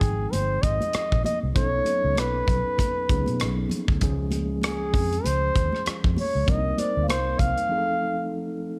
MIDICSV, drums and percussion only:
0, 0, Header, 1, 2, 480
1, 0, Start_track
1, 0, Key_signature, -4, "minor"
1, 0, Tempo, 614754
1, 1215, Time_signature, 4, 2, 24, 8
1, 6865, End_track
2, 0, Start_track
2, 0, Title_t, "Drums"
2, 9, Note_on_c, 9, 36, 76
2, 16, Note_on_c, 9, 64, 57
2, 18, Note_on_c, 9, 42, 60
2, 87, Note_off_c, 9, 36, 0
2, 94, Note_off_c, 9, 64, 0
2, 96, Note_off_c, 9, 42, 0
2, 255, Note_on_c, 9, 62, 29
2, 255, Note_on_c, 9, 63, 65
2, 258, Note_on_c, 9, 42, 85
2, 333, Note_off_c, 9, 62, 0
2, 333, Note_off_c, 9, 63, 0
2, 336, Note_off_c, 9, 42, 0
2, 490, Note_on_c, 9, 62, 28
2, 493, Note_on_c, 9, 36, 88
2, 496, Note_on_c, 9, 42, 58
2, 568, Note_off_c, 9, 62, 0
2, 571, Note_off_c, 9, 36, 0
2, 574, Note_off_c, 9, 42, 0
2, 630, Note_on_c, 9, 63, 70
2, 637, Note_on_c, 9, 42, 38
2, 708, Note_off_c, 9, 63, 0
2, 715, Note_off_c, 9, 42, 0
2, 729, Note_on_c, 9, 42, 82
2, 739, Note_on_c, 9, 37, 96
2, 807, Note_off_c, 9, 42, 0
2, 817, Note_off_c, 9, 37, 0
2, 875, Note_on_c, 9, 36, 86
2, 953, Note_off_c, 9, 36, 0
2, 972, Note_on_c, 9, 62, 32
2, 972, Note_on_c, 9, 63, 73
2, 972, Note_on_c, 9, 64, 71
2, 983, Note_on_c, 9, 42, 62
2, 1050, Note_off_c, 9, 62, 0
2, 1050, Note_off_c, 9, 63, 0
2, 1050, Note_off_c, 9, 64, 0
2, 1061, Note_off_c, 9, 42, 0
2, 1216, Note_on_c, 9, 36, 98
2, 1217, Note_on_c, 9, 62, 32
2, 1217, Note_on_c, 9, 64, 65
2, 1218, Note_on_c, 9, 42, 77
2, 1294, Note_off_c, 9, 36, 0
2, 1295, Note_off_c, 9, 62, 0
2, 1295, Note_off_c, 9, 64, 0
2, 1296, Note_off_c, 9, 42, 0
2, 1446, Note_on_c, 9, 63, 64
2, 1452, Note_on_c, 9, 42, 70
2, 1525, Note_off_c, 9, 63, 0
2, 1530, Note_off_c, 9, 42, 0
2, 1681, Note_on_c, 9, 63, 61
2, 1698, Note_on_c, 9, 42, 85
2, 1704, Note_on_c, 9, 37, 96
2, 1759, Note_off_c, 9, 63, 0
2, 1776, Note_off_c, 9, 42, 0
2, 1782, Note_off_c, 9, 37, 0
2, 1927, Note_on_c, 9, 64, 59
2, 1934, Note_on_c, 9, 36, 78
2, 1944, Note_on_c, 9, 42, 63
2, 2005, Note_off_c, 9, 64, 0
2, 2012, Note_off_c, 9, 36, 0
2, 2022, Note_off_c, 9, 42, 0
2, 2172, Note_on_c, 9, 62, 29
2, 2172, Note_on_c, 9, 63, 65
2, 2177, Note_on_c, 9, 36, 78
2, 2183, Note_on_c, 9, 42, 90
2, 2250, Note_off_c, 9, 62, 0
2, 2250, Note_off_c, 9, 63, 0
2, 2255, Note_off_c, 9, 36, 0
2, 2261, Note_off_c, 9, 42, 0
2, 2416, Note_on_c, 9, 36, 87
2, 2418, Note_on_c, 9, 42, 59
2, 2494, Note_off_c, 9, 36, 0
2, 2496, Note_off_c, 9, 42, 0
2, 2547, Note_on_c, 9, 63, 78
2, 2558, Note_on_c, 9, 42, 38
2, 2625, Note_off_c, 9, 63, 0
2, 2636, Note_off_c, 9, 42, 0
2, 2653, Note_on_c, 9, 42, 84
2, 2655, Note_on_c, 9, 62, 30
2, 2664, Note_on_c, 9, 37, 94
2, 2731, Note_off_c, 9, 42, 0
2, 2734, Note_off_c, 9, 62, 0
2, 2742, Note_off_c, 9, 37, 0
2, 2885, Note_on_c, 9, 63, 72
2, 2885, Note_on_c, 9, 64, 70
2, 2899, Note_on_c, 9, 42, 65
2, 2964, Note_off_c, 9, 63, 0
2, 2964, Note_off_c, 9, 64, 0
2, 2977, Note_off_c, 9, 42, 0
2, 3032, Note_on_c, 9, 36, 94
2, 3110, Note_off_c, 9, 36, 0
2, 3129, Note_on_c, 9, 62, 31
2, 3129, Note_on_c, 9, 64, 70
2, 3132, Note_on_c, 9, 42, 87
2, 3135, Note_on_c, 9, 36, 97
2, 3208, Note_off_c, 9, 62, 0
2, 3208, Note_off_c, 9, 64, 0
2, 3210, Note_off_c, 9, 42, 0
2, 3213, Note_off_c, 9, 36, 0
2, 3363, Note_on_c, 9, 63, 72
2, 3370, Note_on_c, 9, 42, 75
2, 3441, Note_off_c, 9, 63, 0
2, 3448, Note_off_c, 9, 42, 0
2, 3603, Note_on_c, 9, 62, 28
2, 3603, Note_on_c, 9, 63, 58
2, 3617, Note_on_c, 9, 42, 85
2, 3624, Note_on_c, 9, 37, 106
2, 3681, Note_off_c, 9, 62, 0
2, 3681, Note_off_c, 9, 63, 0
2, 3696, Note_off_c, 9, 42, 0
2, 3702, Note_off_c, 9, 37, 0
2, 3849, Note_on_c, 9, 64, 64
2, 3855, Note_on_c, 9, 36, 90
2, 3863, Note_on_c, 9, 46, 51
2, 3927, Note_off_c, 9, 64, 0
2, 3933, Note_off_c, 9, 36, 0
2, 3941, Note_off_c, 9, 46, 0
2, 4003, Note_on_c, 9, 42, 47
2, 4081, Note_off_c, 9, 42, 0
2, 4094, Note_on_c, 9, 62, 30
2, 4094, Note_on_c, 9, 63, 64
2, 4104, Note_on_c, 9, 42, 92
2, 4172, Note_off_c, 9, 62, 0
2, 4172, Note_off_c, 9, 63, 0
2, 4182, Note_off_c, 9, 42, 0
2, 4333, Note_on_c, 9, 62, 28
2, 4338, Note_on_c, 9, 36, 91
2, 4341, Note_on_c, 9, 42, 58
2, 4411, Note_off_c, 9, 62, 0
2, 4416, Note_off_c, 9, 36, 0
2, 4419, Note_off_c, 9, 42, 0
2, 4470, Note_on_c, 9, 63, 74
2, 4486, Note_on_c, 9, 37, 31
2, 4548, Note_off_c, 9, 63, 0
2, 4564, Note_off_c, 9, 37, 0
2, 4577, Note_on_c, 9, 42, 88
2, 4587, Note_on_c, 9, 37, 93
2, 4655, Note_off_c, 9, 42, 0
2, 4665, Note_off_c, 9, 37, 0
2, 4718, Note_on_c, 9, 36, 92
2, 4796, Note_off_c, 9, 36, 0
2, 4814, Note_on_c, 9, 62, 35
2, 4814, Note_on_c, 9, 63, 78
2, 4814, Note_on_c, 9, 64, 73
2, 4824, Note_on_c, 9, 46, 49
2, 4892, Note_off_c, 9, 62, 0
2, 4892, Note_off_c, 9, 63, 0
2, 4892, Note_off_c, 9, 64, 0
2, 4903, Note_off_c, 9, 46, 0
2, 5056, Note_on_c, 9, 64, 75
2, 5058, Note_on_c, 9, 36, 96
2, 5061, Note_on_c, 9, 42, 84
2, 5134, Note_off_c, 9, 64, 0
2, 5136, Note_off_c, 9, 36, 0
2, 5139, Note_off_c, 9, 42, 0
2, 5293, Note_on_c, 9, 63, 67
2, 5297, Note_on_c, 9, 42, 73
2, 5371, Note_off_c, 9, 63, 0
2, 5375, Note_off_c, 9, 42, 0
2, 5531, Note_on_c, 9, 62, 29
2, 5531, Note_on_c, 9, 63, 61
2, 5540, Note_on_c, 9, 42, 91
2, 5546, Note_on_c, 9, 37, 99
2, 5609, Note_off_c, 9, 62, 0
2, 5609, Note_off_c, 9, 63, 0
2, 5618, Note_off_c, 9, 42, 0
2, 5624, Note_off_c, 9, 37, 0
2, 5773, Note_on_c, 9, 36, 82
2, 5773, Note_on_c, 9, 64, 60
2, 5779, Note_on_c, 9, 42, 64
2, 5851, Note_off_c, 9, 36, 0
2, 5851, Note_off_c, 9, 64, 0
2, 5857, Note_off_c, 9, 42, 0
2, 5915, Note_on_c, 9, 42, 46
2, 5993, Note_off_c, 9, 42, 0
2, 6865, End_track
0, 0, End_of_file